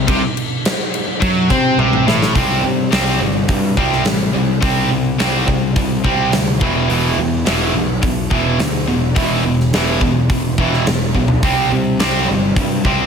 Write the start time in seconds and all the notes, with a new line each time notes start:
0.07 C2 C3, kick, crash
0.37 crash
0.65 snare, crash
0.94 crash
1.21 F#2 F#3, kick, crash
1.49 C3 C4, kick, snare, crash
1.78 C2 C3, high tom
1.93 mid tom
2.06 A1 A2, snare
2.22 snare
2.34 C2 C3 G3 C4, kick, open hi-hat
2.63 C3 G3
2.91 C2 C3 G3 C4, snare, open hi-hat
3.20 G1 C3 G3
3.48 G2 C3 G3, kick, open hi-hat
3.77 C2 C3 G3 C4, kick
3.92 snare
4.05 A1 C3 G3, snare, open hi-hat
4.33 C2 C3 G3
4.61 C2 C3 G3 C4, kick, open hi-hat
4.90 C2 C3 G3
5.18 C2 C3 G3 C4, snare, open hi-hat
5.47 C2 C3 G3, kick
5.76 C2 C3 G3, kick, open hi-hat
6.04 C2 C3 G3 C4, kick
6.32 D2 C3 G3, snare, open hi-hat
6.60 E1 E2 B2 E3, kick
6.89 E1 E2 B2 E3, open hi-hat
7.18 E2 B2
7.45 E1 E2 B2 E3, snare, open hi-hat
7.74 B1 E2 B2
8.02 B1 E2 B2, kick, open hi-hat
8.30 E1 E2 B2 E3, kick
8.59 D2 E2 B2, snare, open hi-hat
8.87 E1 E2 B2
9.15 E1 E2 B2 E3, kick, open hi-hat
9.45 E1 E2 B2
9.60 snare
9.73 E1 E2 B2 E3, snare, open hi-hat
10.01 E1 E2 B2, kick
10.30 E1 E2 B2, kick, open hi-hat
10.58 E1 E2 B2 E3, kick
10.73 snare
10.86 E1 E2 B2, snare, open hi-hat
11.15 B1 E2 B2, kick
11.28 floor tom
11.43 C2 C3 G3 C4, kick, open hi-hat
11.71 C3 G3
11.99 C2 C3 G3 C4, snare, open hi-hat
12.29 G1 C3 G3
12.56 G2 C3 G3, kick, open hi-hat
12.85 C2 C3 G3 C4, kick